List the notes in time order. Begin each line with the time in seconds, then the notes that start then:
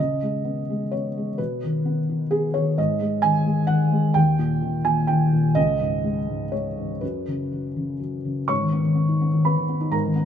Already playing: D#5
0.00 C#3
0.23 G#3
0.45 B3
0.70 G#3
0.91 B3 C#5
1.17 G#3
1.38 B2 B4
1.63 D#3
1.85 B3
2.09 D#3
2.31 B3 G#4
2.54 D#3 C#5
2.78 G#2 D#5
3.01 G#3
3.22 D#3 G#5
3.46 G#3
3.67 D#3 F#5
3.92 G#3
4.14 D#2 G5
4.39 A#2
4.62 D#3
4.85 A#2 G#5
5.07 D#3 G5
5.33 A#2
5.55 C#2 D#5
5.81 G#2
6.04 G#3
6.29 G#2
6.52 G#3 C#5
6.78 G#2
7.01 F#2 B4
7.28 C#3
7.53 F#3
7.76 C#3
8.00 F#3
8.25 C#3
8.48 G#2 C#5 C#6
8.61 D#3
8.73 B3
8.84 D#3
8.95 B3
9.09 D#4
9.21 B3
9.33 D#3
9.45 B3 B4 B5
9.57 D#3
9.69 B3
9.81 D#4
9.92 G#2 A#4 A#5
10.05 D#3
10.16 B3